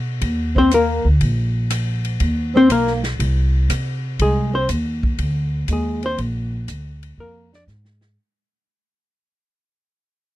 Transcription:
Already playing: B2
0.21 D#2, kick, ride
0.56 C4 C5, kick
0.71 A#3 A#4, hi-hat pedal, ride
1.05 D2
1.21 A#1, kick, ride
1.70 cross-stick, hi-hat pedal, ride
2.05 ride
2.20 D#2, kick, ride
2.55 C4 C5
2.69 B1 A#3 A#4, hi-hat pedal, ride
2.87 snare
3.03 snare, ride
3.19 C2, kick, ride
3.69 C3, cross-stick, hi-hat pedal, ride
4.19 C2 G#3 G#4, kick, ride
4.54 C4 C5
4.69 D#2, kick, hi-hat pedal, ride
5.03 kick
5.18 D2, kick, ride
5.68 D#2 G#3, kick, hi-hat pedal, ride
5.73 G#4
6.03 C4 C5, ride
6.18 A#1, kick, ride
6.68 D2, kick, hi-hat pedal, ride
7.03 ride
7.18 F2 A#3 A#4, kick
7.52 D4 D5, snare
7.67 G#2, snare, hi-hat pedal
7.85 snare
8.01 snare

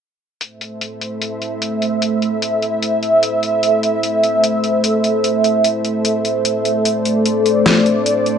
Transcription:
0.41 A3 A4 C5 E5, closed hi-hat
0.61 closed hi-hat
0.81 closed hi-hat
1.01 closed hi-hat
1.22 closed hi-hat
1.42 closed hi-hat
1.62 closed hi-hat
1.82 closed hi-hat
2.02 closed hi-hat
2.22 closed hi-hat
2.42 closed hi-hat
2.62 closed hi-hat
2.82 closed hi-hat
3.03 closed hi-hat
3.23 closed hi-hat
3.43 closed hi-hat
3.63 closed hi-hat
3.83 closed hi-hat
4.03 closed hi-hat
4.24 closed hi-hat
4.44 closed hi-hat
4.64 closed hi-hat
4.84 closed hi-hat
5.04 closed hi-hat
5.24 closed hi-hat
5.44 closed hi-hat
5.64 closed hi-hat
5.85 closed hi-hat
6.05 closed hi-hat
6.25 closed hi-hat
6.45 closed hi-hat
6.65 closed hi-hat
6.85 D5, closed hi-hat
7.05 closed hi-hat
7.26 closed hi-hat
7.46 closed hi-hat
7.66 snare, closed hi-hat
7.86 closed hi-hat
8.06 closed hi-hat
8.26 closed hi-hat

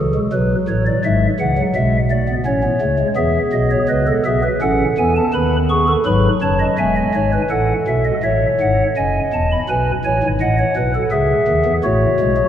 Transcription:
Already playing: C#2 C#3 E3 A4
0.14 G#3
0.33 B1 B2 F#3 B4
0.68 A1 A2 C#5
0.86 D5
1.05 G#1 G#2 G#3 E5
1.40 C#2 C#3 E3 F#5
1.58 F#3
1.75 B1 B2 G#3 E5
2.11 A3 D5
2.28 B3
2.46 A1 A2 C#4 C#5
2.63 B3
2.81 C#2 C#3 A3
2.98 G#3
3.16 E2 E3 B3 G#4 E5
3.53 B1 B2 D#5
3.71 C#5
3.89 C#2 C#3 B4 D#5
4.07 A4
4.25 B1 B2 G#4 E5
4.43 B4
4.62 A1 A2 C#4 A4 F#5
4.98 E2 E3 B3 G#5
5.16 A5
5.34 D#2 D#3 B4 B5
5.70 G#4 C#6
5.88 A4
6.06 G#1 G#2 F#3 B4 B5
6.42 F#1 F#2 C#5 A5
6.60 D#5
6.78 E1 E2 G#3 E5 G#5
6.97 D#5
7.14 G#1 G#2 C#5
7.33 B4
7.50 A1 A2 A4 F#5
7.88 B1 B2 E5
8.05 D#5
8.23 A1 A2 C#5 E5
8.60 G#1 G#2 F#5
8.96 F#1 F#2 D#5 G#5
9.33 E1 E2 A5
9.52 B5
9.69 B1 B2 B4 G#5
10.05 A1 A2 C#5 G#5
10.23 G#1 G#2
10.41 A1 A2 D#5 F#5
10.59 C#5
10.76 B1 B2 B4
10.95 A4
11.11 C#2 C#3 G#4 E5
11.47 D#2 D#3
11.65 E2 E3
11.84 A1 A2 A3 F#4 C#5
12.20 B1 B2 G#3
12.37 F#3

